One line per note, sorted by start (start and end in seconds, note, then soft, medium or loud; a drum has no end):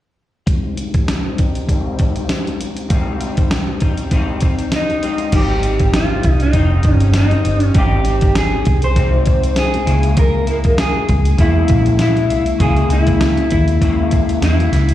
0.46 1.38 G#2 medium
0.46 1.41 G3 medium
0.46 1.38 C4 medium
0.46 1.37 D#4 medium
0.46 kick loud
0.46 closed hi-hat medium
0.77 closed hi-hat medium
0.94 kick medium
0.94 closed hi-hat medium
1.08 snare medium
1.08 closed hi-hat medium
1.38 1.68 G3 soft
1.38 1.69 C4 soft
1.38 1.68 D#4 soft
1.38 kick medium
1.38 closed hi-hat medium
1.55 closed hi-hat soft
1.66 2.88 G#2 medium
1.66 2.90 G3 medium
1.66 2.91 C4 medium
1.66 kick medium
1.66 closed hi-hat medium
1.72 2.92 D#4 medium
1.99 kick medium
1.99 closed hi-hat medium
2.16 closed hi-hat soft
2.29 snare loud
2.29 closed hi-hat medium
2.47 closed hi-hat soft
2.61 closed hi-hat medium
2.77 closed hi-hat soft
2.89 3.80 G#2 medium
2.89 3.84 G3 medium
2.89 3.82 C4 medium
2.89 3.80 D#4 medium
2.89 kick loud
2.89 closed hi-hat medium
3.21 closed hi-hat medium
3.37 kick medium
3.37 closed hi-hat medium
3.51 snare loud
3.51 closed hi-hat medium
3.80 4.11 G3 soft
3.80 4.11 C4 soft
3.80 4.11 D#4 soft
3.80 kick medium
3.80 closed hi-hat medium
3.98 closed hi-hat soft
4.11 4.41 G#2 medium
4.11 4.42 G3 medium
4.11 4.42 C4 medium
4.11 4.40 D#4 medium
4.11 kick medium
4.11 closed hi-hat medium
4.41 5.02 C4 soft
4.41 5.02 D#4 soft
4.41 kick medium
4.41 closed hi-hat medium
4.45 5.03 G3 soft
4.59 closed hi-hat soft
4.72 snare loud
4.72 closed hi-hat medium
4.76 5.31 D#4 medium
4.90 closed hi-hat soft
5.02 5.32 G#2 medium
5.02 5.33 G3 medium
5.02 5.33 C4 medium
5.02 5.33 D#4 medium
5.02 closed hi-hat medium
5.18 closed hi-hat soft
5.32 6.20 G#1 medium
5.32 5.63 G#2 medium
5.32 5.64 G3 medium
5.32 5.64 C4 medium
5.32 5.62 D#4 medium
5.32 5.97 G4 medium
5.32 kick loud
5.32 closed hi-hat medium
5.32 crash medium
5.63 6.54 C4 soft
5.63 6.54 D#4 soft
5.63 closed hi-hat medium
5.67 6.53 G3 soft
5.79 kick medium
5.79 closed hi-hat medium
5.94 6.39 F4 medium
5.94 snare loud
5.94 closed hi-hat medium
6.23 6.48 C2 medium
6.23 kick medium
6.23 closed hi-hat medium
6.40 6.94 D#4 medium
6.40 closed hi-hat soft
6.53 6.78 F1 medium
6.53 7.14 G3 medium
6.53 7.14 C4 medium
6.53 7.16 D#4 medium
6.53 kick medium
6.53 closed hi-hat medium
6.83 7.33 G1 medium
6.83 kick medium
6.83 closed hi-hat medium
6.94 7.12 C#4 medium
7.00 closed hi-hat soft
7.14 7.74 G3 medium
7.14 7.75 C4 medium
7.14 7.75 D#4 medium
7.14 7.64 D#4 medium
7.14 snare loud
7.14 closed hi-hat medium
7.31 closed hi-hat soft
7.45 7.69 G1 medium
7.45 closed hi-hat medium
7.60 closed hi-hat medium
7.64 7.78 C#4 medium
7.74 8.62 G#1 loud
7.74 8.05 G#2 medium
7.74 8.06 G3 medium
7.74 8.05 C4 medium
7.74 8.03 D#4 medium
7.74 8.38 G4 medium
7.74 kick loud
7.74 closed hi-hat medium
8.04 8.95 C4 soft
8.04 8.96 D#4 soft
8.04 closed hi-hat medium
8.21 kick medium
8.21 closed hi-hat medium
8.35 8.84 G#4 medium
8.35 snare loud
8.35 closed hi-hat medium
8.65 9.84 C2 medium
8.65 kick medium
8.65 closed hi-hat medium
8.82 9.54 C5 medium
8.82 closed hi-hat soft
8.95 9.87 G#2 medium
8.95 9.87 C4 medium
8.95 9.86 D#4 medium
8.95 kick medium
8.95 closed hi-hat medium
9.26 kick medium
9.26 closed hi-hat medium
9.44 closed hi-hat soft
9.56 10.19 G#4 medium
9.56 snare loud
9.56 closed hi-hat medium
9.74 closed hi-hat soft
9.86 10.85 C#2 medium
9.86 10.49 C#3 medium
9.86 10.51 G#3 medium
9.86 10.48 A#3 medium
9.86 10.46 E4 medium
9.86 closed hi-hat medium
10.03 closed hi-hat medium
10.17 10.75 A#4 medium
10.17 kick loud
10.17 closed hi-hat medium
10.47 11.38 A#3 soft
10.47 11.39 E4 soft
10.47 closed hi-hat medium
10.51 11.38 G#3 soft
10.64 kick medium
10.64 closed hi-hat medium
10.78 11.42 G#4 medium
10.78 snare loud
10.78 closed hi-hat medium
11.09 11.33 C#2 medium
11.09 kick medium
11.09 closed hi-hat medium
11.25 closed hi-hat soft
11.38 11.63 E2 medium
11.38 11.99 C#3 medium
11.38 12.00 G#3 medium
11.38 11.99 A#3 medium
11.38 11.96 E4 medium
11.38 12.01 E4 medium
11.38 kick medium
11.38 closed hi-hat medium
11.68 12.29 A#1 medium
11.68 kick medium
11.68 closed hi-hat medium
11.86 closed hi-hat soft
11.99 12.61 G#3 soft
11.99 12.61 A#3 medium
11.99 12.63 E4 medium
11.99 12.61 E4 medium
11.99 snare loud
11.99 closed hi-hat medium
12.17 closed hi-hat soft
12.29 12.54 C2 medium
12.29 closed hi-hat medium
12.46 closed hi-hat medium
12.59 12.85 C#2 loud
12.59 13.80 C#3 medium
12.59 13.82 G#3 medium
12.59 12.92 G#4 medium
12.59 kick loud
12.59 closed hi-hat medium
12.63 13.82 A#3 medium
12.63 13.83 E4 medium
12.77 closed hi-hat soft
12.89 13.38 C#2 loud
12.89 13.51 E4 medium
12.89 closed hi-hat medium
13.07 kick medium
13.07 closed hi-hat medium
13.21 snare loud
13.21 closed hi-hat medium
13.37 closed hi-hat soft
13.51 14.39 D#2 medium
13.51 14.43 E4 medium
13.51 kick medium
13.51 closed hi-hat medium
13.68 closed hi-hat soft
13.81 14.41 C#3 medium
13.81 14.43 G#3 medium
13.81 14.43 A#3 medium
13.81 14.44 E4 medium
13.81 kick medium
13.81 closed hi-hat medium
14.11 kick medium
14.11 closed hi-hat medium
14.29 closed hi-hat soft
14.42 14.66 E2 medium
14.42 14.94 C#3 soft
14.42 14.94 G#3 soft
14.42 14.94 A#3 medium
14.42 14.94 E4 medium
14.42 snare loud
14.42 closed hi-hat medium
14.60 closed hi-hat soft
14.72 14.94 C#2 medium
14.72 snare soft
14.72 closed hi-hat medium
14.89 closed hi-hat medium